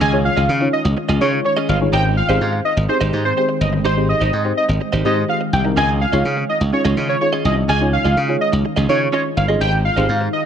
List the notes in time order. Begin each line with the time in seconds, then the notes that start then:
Already playing: D#3 G#3 C#4 F4
0.01 C#2 C#4 F4 G#4 D#5 G#5
0.13 C#4 D#4 F4 G#4 C#5
0.25 F5, muted clean electric guitar stroke
0.37 C#2 C#4 F4 G#4 D#5
0.49 C#3, muted clean electric guitar stroke
0.61 C#4 D#4 F4 G#4 C#5, muted clean electric guitar stroke
0.73 D#5
0.85 C#2, muted clean electric guitar stroke
0.97 muted clean electric guitar stroke
1.09 C#2 C#4 F4 G#4 D#5
1.21 C#3 C#4 D#4 F4 G#4 C#5 D#5
1.33 muted clean electric guitar stroke
1.45 C#5, muted clean electric guitar stroke
1.57 C#4 F4 G#4 D#5
1.69 G1 C#4 F4 G#4 D#5 F5
1.81 C#4 D#4 F4 G#4 C#5, muted clean electric guitar stroke
1.93 G#1 D#3 G#3 C4 D#4 G4 C5 D#5 G5
2.17 F5, muted clean electric guitar stroke
2.29 G#1 C4 D#4 G4 G#4 C5 D#5
2.41 G#2, muted clean electric guitar stroke
2.53 muted clean electric guitar stroke
2.65 D#5
2.77 G#1, muted clean electric guitar stroke
2.89 C4 D#4 G4 G#4 C5, muted clean electric guitar stroke
3.01 G#1 D#4 G4 C5 D#5
3.13 G#2 D#4 G4 C5 D#5
3.25 C5
3.37 C4 D#4 G4 G#4 C5, muted clean electric guitar stroke
3.49 muted clean electric guitar stroke
3.61 G1 D#5
3.73 muted clean electric guitar stroke
3.85 G#1 D#4 G4 C5 D#5
3.97 C4 D#4 G4 G#4 C5
4.09 D#5, muted clean electric guitar stroke
4.21 G#1 D#4 G4 C5 D#5
4.33 G#2, muted clean electric guitar stroke
4.45 C4 D#4 G4 G#4 C5, muted clean electric guitar stroke
4.57 D#5
4.69 G#1, muted clean electric guitar stroke
4.81 muted clean electric guitar stroke
4.93 G#1 D#4 G4 C5 D#5
5.05 G#2 C4 D#4 G4 G#4 C5 D#5
5.17 muted clean electric guitar stroke
5.29 F5, muted clean electric guitar stroke
5.41 muted clean electric guitar stroke
5.53 C2 G5
5.65 C4 D#4 G4 G#4 A#4, muted clean electric guitar stroke
5.77 C#2 C#4 F4 G#4 D#5 G#5
6.01 F5, muted clean electric guitar stroke
6.13 C#2 C#4 D#4 F4 G#4 C#5 D#5
6.25 C#3, muted clean electric guitar stroke
6.37 muted clean electric guitar stroke
6.49 D#5
6.61 C#2, muted clean electric guitar stroke
6.73 C#4 D#4 F4 G#4 C#5, muted clean electric guitar stroke
6.85 C#2 C#4 F4 G#4 D#5
6.97 C#3 C#4 F4 G#4 D#5
7.09 C#5, muted clean electric guitar stroke
7.21 C#4 D#4 F4 G#4 C#5, muted clean electric guitar stroke
7.33 C#4 F4 G#4 D#5
7.45 C2 C#4 F4 G#4 D#5
7.57 muted clean electric guitar stroke
7.68 C#2 C#4 D#4 F4 G#4 D#5 G#5
7.81 C#4 D#4 F4 G#4 C#5
7.93 F5, muted clean electric guitar stroke
8.04 C#2 C#4 F4 G#4 D#5
8.17 C#3, muted clean electric guitar stroke
8.29 C#4 D#4 F4 G#4 C#5, muted clean electric guitar stroke
8.41 D#5
8.53 C#2, muted clean electric guitar stroke
8.65 muted clean electric guitar stroke
8.76 C#2 C#4 F4 G#4 D#5
8.88 C#3 C#4 D#4 F4 G#4 C#5 D#5
9.01 muted clean electric guitar stroke
9.12 C#4 F4 G#4 C#5 D#5
9.25 muted clean electric guitar stroke
9.37 G1 F5, muted clean electric guitar stroke
9.48 C#4 D#4 F4 G#4 D#5
9.60 G#1 G#3 D#4 G4 C5 D#5 G5
9.85 F5, muted clean electric guitar stroke
9.96 G#1 C4 D#4 G4 G#4 C5 D#5
10.09 G#2
10.21 muted clean electric guitar stroke
10.33 D#5